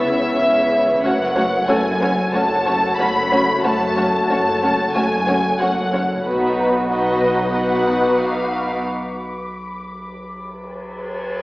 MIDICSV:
0, 0, Header, 1, 11, 480
1, 0, Start_track
1, 0, Tempo, 652174
1, 759, Time_signature, 4, 2, 24, 8
1, 8405, End_track
2, 0, Start_track
2, 0, Title_t, "Violin section"
2, 0, Program_c, 0, 48
2, 0, Note_on_c, 0, 88, 48
2, 489, Note_off_c, 0, 88, 0
2, 4602, Note_on_c, 0, 83, 49
2, 4607, Note_on_c, 0, 85, 47
2, 5565, Note_on_c, 0, 86, 43
2, 6926, Note_off_c, 0, 85, 0
2, 6926, Note_off_c, 0, 86, 0
2, 6926, Note_on_c, 0, 86, 47
2, 7694, Note_off_c, 0, 86, 0
2, 8171, Note_off_c, 0, 83, 0
2, 8405, End_track
3, 0, Start_track
3, 0, Title_t, "Felt piano"
3, 0, Program_c, 1, 0
3, 0, Control_c, 1, 64, 127
3, 0, Note_on_c, 1, 82, 59
3, 494, Note_off_c, 1, 82, 0
3, 773, Control_c, 1, 64, 0
3, 886, Control_c, 1, 64, 127
3, 1246, Note_on_c, 1, 69, 61
3, 2653, Note_off_c, 1, 69, 0
3, 4614, Control_c, 1, 64, 0
3, 4740, Control_c, 1, 64, 127
3, 4853, Note_on_c, 1, 82, 45
3, 6257, Note_off_c, 1, 82, 0
3, 8405, End_track
4, 0, Start_track
4, 0, Title_t, "Violin section"
4, 0, Program_c, 2, 48
4, 0, Note_on_c, 2, 76, 105
4, 754, Note_off_c, 2, 76, 0
4, 763, Note_on_c, 2, 78, 94
4, 1241, Note_off_c, 2, 78, 0
4, 1244, Note_on_c, 2, 80, 91
4, 1721, Note_off_c, 2, 80, 0
4, 1724, Note_on_c, 2, 81, 97
4, 2192, Note_off_c, 2, 81, 0
4, 2197, Note_on_c, 2, 83, 100
4, 2678, Note_off_c, 2, 83, 0
4, 2683, Note_on_c, 2, 81, 99
4, 3151, Note_off_c, 2, 81, 0
4, 3166, Note_on_c, 2, 81, 100
4, 3633, Note_off_c, 2, 81, 0
4, 3642, Note_on_c, 2, 80, 98
4, 4121, Note_off_c, 2, 80, 0
4, 4121, Note_on_c, 2, 78, 82
4, 4600, Note_off_c, 2, 78, 0
4, 5076, Note_on_c, 2, 75, 70
4, 5528, Note_off_c, 2, 75, 0
4, 5551, Note_on_c, 2, 78, 71
4, 6035, Note_off_c, 2, 78, 0
4, 6035, Note_on_c, 2, 77, 70
4, 6517, Note_off_c, 2, 77, 0
4, 8405, End_track
5, 0, Start_track
5, 0, Title_t, "Ambient pad"
5, 0, Program_c, 3, 92
5, 0, Note_on_c, 3, 71, 64
5, 0, Note_on_c, 3, 73, 63
5, 0, Note_on_c, 3, 76, 59
5, 736, Note_off_c, 3, 73, 0
5, 762, Note_on_c, 3, 73, 67
5, 765, Note_on_c, 3, 78, 66
5, 766, Note_off_c, 3, 71, 0
5, 766, Note_off_c, 3, 76, 0
5, 768, Note_on_c, 3, 69, 62
5, 4571, Note_off_c, 3, 73, 0
5, 4602, Note_off_c, 3, 78, 0
5, 4603, Note_off_c, 3, 69, 0
5, 4607, Note_on_c, 3, 66, 69
5, 4608, Note_on_c, 3, 71, 65
5, 6494, Note_off_c, 3, 66, 0
5, 6524, Note_off_c, 3, 71, 0
5, 8405, End_track
6, 0, Start_track
6, 0, Title_t, "Violin section"
6, 0, Program_c, 4, 48
6, 0, Note_on_c, 4, 64, 61
6, 0, Note_on_c, 4, 73, 69
6, 730, Note_off_c, 4, 73, 0
6, 733, Note_off_c, 4, 64, 0
6, 766, Note_on_c, 4, 73, 62
6, 767, Note_on_c, 4, 66, 69
6, 825, Note_off_c, 4, 66, 0
6, 825, Note_off_c, 4, 73, 0
6, 1000, Note_on_c, 4, 73, 62
6, 1002, Note_on_c, 4, 66, 61
6, 1058, Note_off_c, 4, 73, 0
6, 1061, Note_off_c, 4, 66, 0
6, 1238, Note_on_c, 4, 66, 62
6, 1238, Note_on_c, 4, 73, 66
6, 1297, Note_off_c, 4, 66, 0
6, 1297, Note_off_c, 4, 73, 0
6, 1481, Note_on_c, 4, 66, 62
6, 1484, Note_on_c, 4, 73, 61
6, 1540, Note_off_c, 4, 66, 0
6, 1543, Note_off_c, 4, 73, 0
6, 1717, Note_on_c, 4, 66, 64
6, 1720, Note_on_c, 4, 73, 62
6, 1776, Note_off_c, 4, 66, 0
6, 1778, Note_off_c, 4, 73, 0
6, 1957, Note_on_c, 4, 73, 61
6, 1959, Note_on_c, 4, 66, 61
6, 2016, Note_off_c, 4, 73, 0
6, 2018, Note_off_c, 4, 66, 0
6, 2206, Note_on_c, 4, 66, 64
6, 2206, Note_on_c, 4, 73, 58
6, 2265, Note_off_c, 4, 66, 0
6, 2265, Note_off_c, 4, 73, 0
6, 2441, Note_on_c, 4, 73, 62
6, 2444, Note_on_c, 4, 66, 57
6, 2500, Note_off_c, 4, 73, 0
6, 2503, Note_off_c, 4, 66, 0
6, 2675, Note_on_c, 4, 73, 66
6, 2680, Note_on_c, 4, 66, 62
6, 2734, Note_off_c, 4, 73, 0
6, 2739, Note_off_c, 4, 66, 0
6, 2917, Note_on_c, 4, 66, 56
6, 2917, Note_on_c, 4, 73, 56
6, 2976, Note_off_c, 4, 66, 0
6, 2976, Note_off_c, 4, 73, 0
6, 3161, Note_on_c, 4, 66, 62
6, 3163, Note_on_c, 4, 73, 59
6, 3220, Note_off_c, 4, 66, 0
6, 3221, Note_off_c, 4, 73, 0
6, 3404, Note_on_c, 4, 73, 52
6, 3405, Note_on_c, 4, 66, 54
6, 3463, Note_off_c, 4, 73, 0
6, 3464, Note_off_c, 4, 66, 0
6, 3639, Note_on_c, 4, 66, 56
6, 3642, Note_on_c, 4, 73, 52
6, 3698, Note_off_c, 4, 66, 0
6, 3701, Note_off_c, 4, 73, 0
6, 3875, Note_on_c, 4, 66, 57
6, 3877, Note_on_c, 4, 73, 53
6, 3933, Note_off_c, 4, 66, 0
6, 3936, Note_off_c, 4, 73, 0
6, 4120, Note_on_c, 4, 73, 57
6, 4121, Note_on_c, 4, 66, 60
6, 4178, Note_off_c, 4, 73, 0
6, 4180, Note_off_c, 4, 66, 0
6, 4361, Note_on_c, 4, 66, 51
6, 4364, Note_on_c, 4, 73, 54
6, 4420, Note_off_c, 4, 66, 0
6, 4423, Note_off_c, 4, 73, 0
6, 4587, Note_on_c, 4, 66, 58
6, 4593, Note_on_c, 4, 71, 66
6, 5044, Note_off_c, 4, 66, 0
6, 5047, Note_off_c, 4, 71, 0
6, 5070, Note_on_c, 4, 71, 58
6, 5075, Note_on_c, 4, 66, 62
6, 5545, Note_off_c, 4, 71, 0
6, 5547, Note_off_c, 4, 66, 0
6, 5558, Note_on_c, 4, 66, 55
6, 5558, Note_on_c, 4, 71, 55
6, 6499, Note_off_c, 4, 66, 0
6, 6499, Note_off_c, 4, 71, 0
6, 8405, End_track
7, 0, Start_track
7, 0, Title_t, "French horn section"
7, 0, Program_c, 5, 60
7, 0, Note_on_c, 5, 59, 67
7, 0, Note_on_c, 5, 64, 76
7, 635, Note_off_c, 5, 59, 0
7, 635, Note_off_c, 5, 64, 0
7, 761, Note_on_c, 5, 66, 83
7, 762, Note_on_c, 5, 57, 81
7, 4570, Note_off_c, 5, 66, 0
7, 4571, Note_off_c, 5, 57, 0
7, 4595, Note_on_c, 5, 59, 59
7, 4597, Note_on_c, 5, 66, 63
7, 5048, Note_off_c, 5, 59, 0
7, 5048, Note_off_c, 5, 66, 0
7, 5070, Note_on_c, 5, 66, 64
7, 5072, Note_on_c, 5, 59, 61
7, 5536, Note_off_c, 5, 66, 0
7, 5538, Note_off_c, 5, 59, 0
7, 5545, Note_on_c, 5, 66, 59
7, 5547, Note_on_c, 5, 59, 62
7, 6493, Note_off_c, 5, 66, 0
7, 6494, Note_off_c, 5, 59, 0
7, 8405, End_track
8, 0, Start_track
8, 0, Title_t, "Viola section"
8, 0, Program_c, 6, 48
8, 0, Note_on_c, 6, 59, 59
8, 0, Note_on_c, 6, 61, 59
8, 729, Note_off_c, 6, 61, 0
8, 730, Note_off_c, 6, 59, 0
8, 752, Note_on_c, 6, 61, 64
8, 755, Note_on_c, 6, 57, 65
8, 811, Note_off_c, 6, 61, 0
8, 813, Note_off_c, 6, 57, 0
8, 992, Note_on_c, 6, 57, 63
8, 993, Note_on_c, 6, 61, 64
8, 1051, Note_off_c, 6, 57, 0
8, 1052, Note_off_c, 6, 61, 0
8, 1238, Note_on_c, 6, 57, 65
8, 1241, Note_on_c, 6, 61, 57
8, 1297, Note_off_c, 6, 57, 0
8, 1300, Note_off_c, 6, 61, 0
8, 1483, Note_on_c, 6, 57, 64
8, 1483, Note_on_c, 6, 61, 60
8, 1542, Note_off_c, 6, 57, 0
8, 1542, Note_off_c, 6, 61, 0
8, 1724, Note_on_c, 6, 57, 70
8, 1724, Note_on_c, 6, 61, 66
8, 1783, Note_off_c, 6, 57, 0
8, 1783, Note_off_c, 6, 61, 0
8, 1964, Note_on_c, 6, 61, 56
8, 1967, Note_on_c, 6, 57, 58
8, 2023, Note_off_c, 6, 61, 0
8, 2026, Note_off_c, 6, 57, 0
8, 2199, Note_on_c, 6, 57, 62
8, 2200, Note_on_c, 6, 61, 62
8, 2258, Note_off_c, 6, 57, 0
8, 2259, Note_off_c, 6, 61, 0
8, 2445, Note_on_c, 6, 61, 57
8, 2446, Note_on_c, 6, 57, 61
8, 2504, Note_off_c, 6, 61, 0
8, 2505, Note_off_c, 6, 57, 0
8, 2683, Note_on_c, 6, 57, 63
8, 2685, Note_on_c, 6, 61, 56
8, 2742, Note_off_c, 6, 57, 0
8, 2744, Note_off_c, 6, 61, 0
8, 2918, Note_on_c, 6, 61, 59
8, 2919, Note_on_c, 6, 57, 58
8, 2977, Note_off_c, 6, 61, 0
8, 2978, Note_off_c, 6, 57, 0
8, 3162, Note_on_c, 6, 61, 56
8, 3163, Note_on_c, 6, 57, 55
8, 3220, Note_off_c, 6, 61, 0
8, 3221, Note_off_c, 6, 57, 0
8, 3404, Note_on_c, 6, 57, 59
8, 3405, Note_on_c, 6, 61, 60
8, 3463, Note_off_c, 6, 57, 0
8, 3464, Note_off_c, 6, 61, 0
8, 3641, Note_on_c, 6, 57, 64
8, 3642, Note_on_c, 6, 61, 61
8, 3700, Note_off_c, 6, 57, 0
8, 3701, Note_off_c, 6, 61, 0
8, 3881, Note_on_c, 6, 57, 54
8, 3885, Note_on_c, 6, 61, 56
8, 3940, Note_off_c, 6, 57, 0
8, 3943, Note_off_c, 6, 61, 0
8, 4130, Note_on_c, 6, 57, 60
8, 4130, Note_on_c, 6, 61, 56
8, 4189, Note_off_c, 6, 57, 0
8, 4189, Note_off_c, 6, 61, 0
8, 4361, Note_on_c, 6, 61, 52
8, 4365, Note_on_c, 6, 57, 54
8, 4420, Note_off_c, 6, 61, 0
8, 4424, Note_off_c, 6, 57, 0
8, 4607, Note_on_c, 6, 59, 61
8, 4607, Note_on_c, 6, 63, 55
8, 5053, Note_off_c, 6, 63, 0
8, 5054, Note_off_c, 6, 59, 0
8, 5080, Note_on_c, 6, 59, 56
8, 5081, Note_on_c, 6, 63, 53
8, 5545, Note_off_c, 6, 59, 0
8, 5545, Note_off_c, 6, 63, 0
8, 5553, Note_on_c, 6, 59, 59
8, 5554, Note_on_c, 6, 63, 56
8, 6497, Note_off_c, 6, 59, 0
8, 6497, Note_off_c, 6, 63, 0
8, 8405, End_track
9, 0, Start_track
9, 0, Title_t, "Cello section"
9, 0, Program_c, 7, 48
9, 0, Note_on_c, 7, 49, 68
9, 758, Note_off_c, 7, 49, 0
9, 759, Note_on_c, 7, 42, 86
9, 1182, Note_off_c, 7, 42, 0
9, 1238, Note_on_c, 7, 42, 85
9, 1662, Note_off_c, 7, 42, 0
9, 1719, Note_on_c, 7, 42, 75
9, 2142, Note_off_c, 7, 42, 0
9, 2203, Note_on_c, 7, 42, 71
9, 2625, Note_off_c, 7, 42, 0
9, 2682, Note_on_c, 7, 42, 81
9, 3104, Note_off_c, 7, 42, 0
9, 3161, Note_on_c, 7, 42, 72
9, 3583, Note_off_c, 7, 42, 0
9, 3642, Note_on_c, 7, 42, 72
9, 4064, Note_off_c, 7, 42, 0
9, 4121, Note_on_c, 7, 42, 67
9, 4543, Note_off_c, 7, 42, 0
9, 4604, Note_on_c, 7, 47, 65
9, 6492, Note_off_c, 7, 47, 0
9, 8405, End_track
10, 0, Start_track
10, 0, Title_t, "Sub bass"
10, 0, Program_c, 8, 38
10, 0, Note_on_c, 8, 37, 77
10, 760, Note_on_c, 8, 30, 88
10, 771, Note_off_c, 8, 37, 0
10, 4598, Note_on_c, 8, 35, 79
10, 4609, Note_off_c, 8, 30, 0
10, 8405, Note_off_c, 8, 35, 0
10, 8405, End_track
11, 0, Start_track
11, 0, Title_t, "Double bass section"
11, 0, Program_c, 10, 48
11, 0, Note_on_c, 10, 37, 64
11, 760, Note_off_c, 10, 37, 0
11, 761, Note_on_c, 10, 30, 77
11, 1183, Note_off_c, 10, 30, 0
11, 1236, Note_on_c, 10, 30, 77
11, 1661, Note_off_c, 10, 30, 0
11, 1718, Note_on_c, 10, 30, 82
11, 2142, Note_off_c, 10, 30, 0
11, 2198, Note_on_c, 10, 30, 79
11, 2622, Note_off_c, 10, 30, 0
11, 2677, Note_on_c, 10, 30, 77
11, 3101, Note_off_c, 10, 30, 0
11, 3158, Note_on_c, 10, 30, 75
11, 3582, Note_off_c, 10, 30, 0
11, 3638, Note_on_c, 10, 30, 74
11, 4062, Note_off_c, 10, 30, 0
11, 4116, Note_on_c, 10, 30, 73
11, 4541, Note_off_c, 10, 30, 0
11, 4598, Note_on_c, 10, 35, 70
11, 6489, Note_off_c, 10, 35, 0
11, 8405, End_track
0, 0, End_of_file